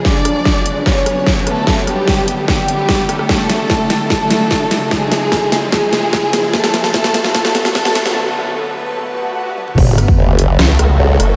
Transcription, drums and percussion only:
0.05 kick loud
0.05 snare medium
0.25 cross-stick medium
0.25 closed hi-hat medium
0.45 kick loud
0.45 snare medium
0.66 closed hi-hat medium
0.86 kick medium
0.86 cross-stick medium
0.86 snare medium
1.06 cross-stick medium
1.06 closed hi-hat medium
1.27 kick loud
1.27 snare medium
1.47 cross-stick medium
1.47 closed hi-hat medium
1.67 kick loud
1.67 snare medium
1.87 cross-stick medium
1.87 closed hi-hat medium
2.08 kick medium
2.08 snare medium
2.28 closed hi-hat medium
2.48 kick medium
2.48 snare medium
2.68 closed hi-hat medium
2.89 kick medium
2.89 snare medium
3.09 cross-stick medium
3.09 closed hi-hat medium
3.19 cross-stick medium
3.29 kick loud
3.29 snare medium
3.50 snare medium
3.50 closed hi-hat medium
3.70 kick medium
3.70 snare medium
3.90 snare medium
3.90 closed hi-hat medium
4.10 kick medium
4.10 snare medium
4.31 snare medium
4.31 closed hi-hat medium
4.51 kick medium
4.51 snare medium
4.71 snare medium
4.71 closed hi-hat medium
4.91 kick loud
4.91 snare medium
5.12 snare medium
5.12 closed hi-hat medium
5.32 kick loud
5.32 snare medium
5.52 snare medium
5.52 closed hi-hat medium
5.72 kick medium
5.72 snare medium
5.93 snare medium
5.93 closed hi-hat medium
6.13 kick loud
6.13 snare medium
6.33 snare medium
6.33 closed hi-hat medium
6.54 kick loud
6.54 snare medium
6.64 snare medium
6.74 snare medium
6.74 closed hi-hat medium
6.84 snare medium
6.94 kick loud
6.94 snare medium
7.04 snare medium
7.14 snare loud
7.14 closed hi-hat medium
7.24 snare medium
7.35 kick loud
7.35 snare loud
7.45 snare medium
7.55 snare medium
7.55 closed hi-hat medium
7.65 snare medium
7.75 kick loud
7.75 snare loud
7.85 snare medium
7.95 snare loud
7.95 closed hi-hat medium
8.06 snare medium
9.58 high tom medium
9.68 mid tom medium
9.78 kick loud
9.78 crash loud
9.98 cross-stick medium
9.98 closed hi-hat medium
10.08 kick loud
10.39 closed hi-hat medium
10.59 cross-stick medium
10.59 snare loud
10.79 cross-stick medium
10.79 closed hi-hat medium
11.20 cross-stick medium
11.20 closed hi-hat medium

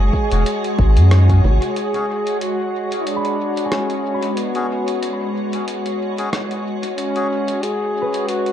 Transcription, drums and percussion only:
0.13 kick medium
0.32 closed hi-hat soft
0.46 closed hi-hat medium
0.64 closed hi-hat soft
0.79 kick loud
0.97 closed hi-hat soft
1.11 cross-stick medium
1.11 closed hi-hat medium
1.29 kick medium
1.29 closed hi-hat soft
1.44 low conga medium
1.62 closed hi-hat soft
1.76 closed hi-hat soft
1.94 closed hi-hat soft
2.27 closed hi-hat soft
2.41 closed hi-hat soft
2.92 closed hi-hat soft
3.07 closed hi-hat soft
3.25 closed hi-hat soft
3.57 closed hi-hat soft
3.72 cross-stick medium
3.72 closed hi-hat soft
3.90 closed hi-hat soft
4.23 closed hi-hat soft
4.37 closed hi-hat soft
4.55 closed hi-hat soft
4.88 closed hi-hat soft
5.03 closed hi-hat soft
5.53 closed hi-hat soft
5.68 closed hi-hat soft
5.86 closed hi-hat soft
6.18 closed hi-hat soft
6.33 cross-stick medium
6.33 closed hi-hat soft
6.51 closed hi-hat soft
6.83 closed hi-hat soft
6.98 closed hi-hat soft
7.16 closed hi-hat soft
7.48 closed hi-hat soft
7.63 closed hi-hat soft
8.14 closed hi-hat soft
8.29 closed hi-hat soft
8.46 closed hi-hat soft

